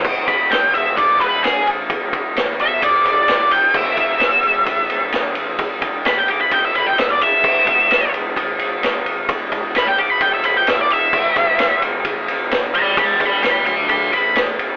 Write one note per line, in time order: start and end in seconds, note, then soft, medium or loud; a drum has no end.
0.04 0.26 E1 medium
0.04 kick loud
0.04 crash loud
0.28 0.50 E1 medium
0.28 0.50 B5 medium
0.28 kick medium
0.28 ride medium
0.50 0.72 B1 medium
0.50 0.73 G5 medium
0.50 snare loud
0.50 ride medium
0.74 0.96 E1 medium
0.74 0.96 E5 medium
0.74 ride medium
0.97 1.19 A1 medium
0.97 1.20 D5 medium
0.97 kick medium
0.97 ride medium
1.20 1.63 E1 medium
1.20 1.43 B4 medium
1.20 ride medium
1.44 1.66 G#4 medium
1.44 snare loud
1.44 ride medium
1.66 1.88 A1 medium
1.66 ride medium
1.90 2.11 E1 medium
1.90 kick loud
1.90 ride medium
2.13 2.34 E1 medium
2.13 kick medium
2.13 ride medium
2.35 2.57 A1 medium
2.35 snare loud
2.35 ride medium
2.58 2.80 B1 loud
2.58 2.83 E5 medium
2.58 ride medium
2.82 3.04 E1 medium
2.82 3.05 D5 medium
2.82 kick medium
2.82 ride loud
3.05 3.27 G1 medium
3.05 3.51 D5 medium
3.05 ride medium
3.28 3.71 E1 medium
3.28 snare loud
3.28 ride loud
3.51 3.74 G5 medium
3.51 ride medium
3.74 3.96 E1 medium
3.74 5.10 E5 loud
3.74 kick loud
3.74 crash medium
3.97 4.19 E1 medium
3.97 kick medium
3.97 ride medium
4.20 4.42 B1 loud
4.20 snare loud
4.20 ride medium
4.43 4.65 E1 loud
4.43 ride medium
4.66 4.88 A1 medium
4.66 kick medium
4.66 ride medium
4.90 5.33 E1 loud
4.90 ride medium
5.12 snare loud
5.12 ride medium
5.35 5.58 A1 medium
5.35 ride medium
5.59 5.81 E1 medium
5.59 kick loud
5.59 ride medium
5.82 6.04 E1 medium
5.82 kick medium
5.82 ride medium
6.05 6.27 A1 medium
6.05 6.17 B5 medium
6.05 snare loud
6.05 ride medium
6.18 6.29 G5 medium
6.28 6.50 B1 medium
6.28 6.40 D6 medium
6.28 ride medium
6.41 6.52 B5 medium
6.51 6.73 E1 medium
6.51 6.64 G5 medium
6.51 kick medium
6.51 ride medium
6.64 6.75 E5 medium
6.75 6.96 G1 medium
6.75 6.86 B5 medium
6.75 ride medium
6.87 6.98 G5 medium
6.98 7.41 E1 medium
6.98 7.11 E5 medium
6.98 snare loud
6.98 ride loud
7.11 7.22 D5 medium
7.21 8.11 E5 medium
7.21 ride medium
7.44 7.65 E1 medium
7.44 kick loud
7.44 crash medium
7.67 7.89 E1 medium
7.67 kick medium
7.67 ride medium
7.90 8.12 B1 loud
7.90 snare loud
7.90 ride loud
8.13 8.35 E1 loud
8.13 ride medium
8.36 8.58 A1 medium
8.36 kick medium
8.36 ride medium
8.59 9.02 E1 loud
8.59 ride medium
8.83 snare loud
8.83 ride medium
9.05 9.27 A1 medium
9.05 ride medium
9.29 9.50 E1 medium
9.29 kick loud
9.29 ride medium
9.52 9.73 E1 medium
9.52 kick medium
9.52 ride medium
9.75 9.96 A1 loud
9.75 9.87 B5 medium
9.75 snare loud
9.75 ride medium
9.87 9.98 G5 medium
9.97 10.19 B1 loud
9.97 10.10 D6 medium
9.97 ride medium
10.10 10.21 B5 medium
10.21 10.42 E1 medium
10.21 10.33 G5 medium
10.21 kick medium
10.21 ride medium
10.33 10.44 E5 medium
10.44 10.66 G1 medium
10.44 10.55 B5 medium
10.44 ride medium
10.57 10.69 G5 medium
10.67 11.10 E1 medium
10.67 10.81 E5 medium
10.67 snare loud
10.67 ride medium
10.81 10.92 D5 medium
10.90 11.80 E5 loud
10.90 ride medium
11.13 11.34 E1 medium
11.13 kick loud
11.13 crash loud
11.36 11.57 E1 medium
11.36 kick medium
11.36 ride medium
11.59 11.81 B1 medium
11.59 snare loud
11.59 ride loud
11.82 12.03 E1 loud
11.82 ride medium
12.05 12.27 A1 loud
12.05 kick medium
12.05 ride medium
12.28 12.71 E1 medium
12.28 ride medium
12.51 snare loud
12.51 ride medium
12.74 12.96 A1 medium
12.74 12.97 G5 medium
12.74 12.97 B5 medium
12.74 ride medium
12.97 13.19 E1 medium
12.97 13.19 G5 medium
12.97 13.20 B5 loud
12.97 kick loud
12.97 ride loud
13.20 13.42 E1 medium
13.20 13.42 G5 medium
13.20 13.42 B5 medium
13.20 kick medium
13.20 ride medium
13.43 13.65 A1 loud
13.43 13.65 B5 medium
13.43 13.65 D6 medium
13.43 snare loud
13.43 ride medium
13.66 14.09 D2 medium
13.66 13.88 B5 medium
13.66 13.89 D6 medium
13.66 ride medium
13.89 14.11 B5 medium
13.89 14.12 D6 medium
13.89 kick medium
13.89 ride medium
14.13 14.56 A1 medium
14.13 14.35 B5 loud
14.13 ride medium
14.35 snare loud
14.35 ride medium
14.59 14.77 E1 medium
14.59 ride medium